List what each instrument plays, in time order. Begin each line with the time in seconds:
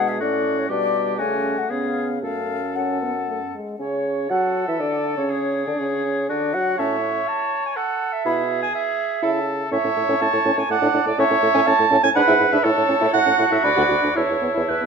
Already playing: bassoon B2, french horn G#3, clarinet D4, oboe G#4
0.08 flute E5
0.20 bassoon A2, french horn A3, clarinet C#4, oboe F#4, flute D5
0.58 flute C#5
0.69 bassoon B2, french horn G3, clarinet D4, oboe G4, flute D5
1.18 bassoon C#3, french horn A3, clarinet C#4, oboe F#4, flute G#5
1.58 flute F#5
1.70 bassoon C#3, french horn B3, clarinet C#4, oboe G#4, flute F5
2.23 bassoon F#2, french horn A3, clarinet C#4, oboe A4, flute F5
2.75 french horn C#4, clarinet C#4, oboe A4, flute F#5
3.02 french horn B3
3.28 french horn A3
3.54 french horn G#3
3.79 bassoon C#3, french horn C#4, flute C#5, clarinet C#5
4.29 bassoon F#3, french horn F#4, oboe A4, flute F#5, clarinet F#5
4.67 bassoon E3, french horn E4, flute E5, clarinet E5
4.80 bassoon D3, french horn D4, clarinet D5, flute D5
5.17 bassoon C#3, french horn C#4, flute C#5, clarinet C#5
5.31 oboe G#4
5.66 bassoon D3, french horn D4, flute D5, clarinet D5
5.79 bassoon C#3, french horn C#4, flute C#5, clarinet C#5
6.29 bassoon D3, french horn D4, oboe F#4, clarinet D5, flute D5
6.53 bassoon F#3, french horn F#4, flute F#5, clarinet F#5
6.78 bassoon A2, french horn C#4, oboe C#5, clarinet E5, flute A5
7.28 clarinet A5
7.66 clarinet G#5
7.76 oboe A4, clarinet F#5
8.13 clarinet E5
8.25 bassoon B2, french horn E4, oboe G#4, flute B5
8.63 clarinet G#5
8.75 clarinet E5
9.22 bassoon C#3, french horn E4, oboe A4, flute A5
9.71 bassoon A2, french horn C#4, oboe C#5, clarinet E5, flute A5
9.84 bassoon A2, french horn C#4
9.96 bassoon A2, french horn A3
10.09 bassoon A2, french horn C#4
10.21 bassoon A2, french horn C#4, clarinet A5
10.33 bassoon A2, french horn A3
10.45 bassoon A2, french horn C#4
10.57 bassoon A2, french horn C#4, clarinet G#5
10.70 bassoon A2, french horn A3, oboe D5, clarinet F#5
10.82 bassoon A2, french horn D4
10.94 bassoon A2, french horn D4
11.06 bassoon A2, french horn A3, clarinet D5
11.18 bassoon A2, french horn C#4, oboe C#5, clarinet E5
11.30 bassoon A2, french horn C#4
11.42 bassoon A2, french horn A3
11.55 bassoon A2, french horn C#4
11.67 bassoon A2, french horn C#4, clarinet A5
11.79 bassoon A2, french horn A3
11.91 bassoon A2, french horn C#4
12.03 bassoon A2, french horn C#4, clarinet G#5
12.15 bassoon G#2, french horn D4, oboe B4, clarinet F#5, flute B5
12.27 bassoon G#2, french horn E4
12.40 bassoon G#2, french horn E4
12.52 bassoon G#2, french horn D4, clarinet E5
12.63 bassoon A2, french horn E4, oboe A4, clarinet C#5, flute A5
12.76 bassoon A2, french horn E4
12.89 bassoon A2, french horn C#4
13.01 bassoon A2, french horn E4
13.13 bassoon A2, french horn E4, oboe F#4, clarinet F#5
13.26 bassoon A2, french horn C#4
13.38 bassoon A2, french horn E4
13.51 bassoon A2, french horn E4, clarinet E5
13.64 bassoon D2, french horn D4, clarinet D5, flute B5
13.76 bassoon D2, french horn F#4
13.89 bassoon D2, french horn F#4
14.02 bassoon D2, french horn D4
14.15 bassoon E2, french horn E4, oboe E4, clarinet C#5, flute A5
14.29 bassoon E2, french horn E4
14.41 bassoon E2, french horn B3
14.55 bassoon E2, french horn E4
14.68 bassoon E2, french horn E4, clarinet B4
14.81 french horn B3